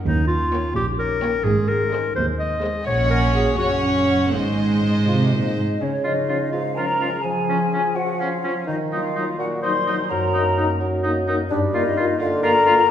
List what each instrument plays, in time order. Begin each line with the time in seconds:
Already playing: harp A#3 D#4 A#4
0.05 double bass section D#2, cello section D#2, harp D#3, clarinet D#4
0.27 harp C#4, clarinet F4
0.52 viola section A#3, harp D#4, violin section C#5 G5
0.76 double bass section A#1, cello section A#2, clarinet G4, harp G4
0.99 clarinet A#4, harp C#5
1.22 viola section A#3, harp G4, violin section C#5 G5
1.44 double bass section G#1, cello section G#2, harp G#2, clarinet G#4
1.68 harp C4, clarinet A#4
1.92 viola section G#3, harp D#4, violin section C5 D#5
2.16 double bass section D#2, cello section D#2, harp G#4, clarinet C5
2.39 harp C5, clarinet D#5
2.62 viola section G#3, harp G#4, violin section C5 D#5
2.86 double bass section A#1, harp A#2, cello section A#2, viola section C#4, clarinet C#5, violin section C#5 F#5
3.10 harp C#4, clarinet A#4
3.34 harp F#4, clarinet G#4
3.58 double bass section F#1, cello section F#2, viola section C#4, clarinet F#4, harp C#5, violin section C#5 F#5
3.83 clarinet C#4, harp F#4
4.08 harp C#5
4.32 double bass section G#1, harp G#2, cello section G#2, viola section G#3, clarinet D#4, violin section C5 D#5
4.58 harp C4
4.83 harp D#4
5.07 cello section C3, clarinet F4, harp G#4, flute section F5
5.32 cello section A#2, clarinet D#4, harp C5, flute section D#5
5.57 cello section G#2, harp G#4
5.81 bassoon C#3, harp C#3, clarinet C#4, flute section C#5
6.04 french horn section F3 C#4, harp C#4, clarinet D#4, oboe F4, flute section D#5
6.28 french horn section F3 C#4, harp F4, oboe F4
6.52 bassoon G#2, clarinet F4, harp G#4, flute section F5
6.75 french horn section F3 C#4, oboe F4, clarinet A#4, harp C#5, flute section A#5
7.00 french horn section F3 C#4, oboe F4, harp G#4
7.22 harp F3, bassoon F3, clarinet G#4, flute section G#5
7.48 french horn section F3 C#4, oboe C#4, harp F4
7.71 french horn section F3 C#4, oboe C#4, harp G#4
7.95 bassoon F3, clarinet F#4, harp C#5, flute section F#5
8.19 french horn section F3 C#4, oboe C#4, clarinet F4, flute section F5, harp F5
8.43 french horn section F3 C#4, oboe C#4, harp C#5
8.67 bassoon D#3, harp D#3, clarinet D#4, flute section D#5
8.91 french horn section F#3 D#4, harp A#3, oboe D#4, clarinet F4, flute section F5
9.15 french horn section F#3 D#4, oboe D#4, harp F#4
9.39 bassoon A#2, clarinet F#4, harp A#4, flute section F#5
9.62 french horn section F#3 D#4, oboe D#4, harp F#4, clarinet C5, flute section C6
9.87 french horn section F#3 D#4, oboe D#4, harp A#4
10.09 harp F#2, bassoon F#3, clarinet A#4, flute section A#5
10.34 harp A#3, french horn section A#3 D#4, oboe D#4
10.57 french horn section A#3 D#4, harp D#4, oboe D#4
10.80 bassoon F#3, harp A#4
11.03 french horn section A#3 D#4, oboe D#4, harp D#4
11.27 french horn section A#3 D#4, oboe D#4, harp A#4
11.50 harp G2, bassoon G3, clarinet D4, flute section D5
11.73 harp A#3, french horn section A#3 F4, clarinet D#4, oboe F4, flute section D#5
11.96 french horn section A#3 F4, harp F4, oboe F4
12.18 bassoon D3, clarinet F4, harp A#4, flute section F5
12.43 french horn section A#3 F4, harp F4, oboe F4, clarinet A#4, flute section A#5
12.66 french horn section A#3 F4, oboe F4, harp A#4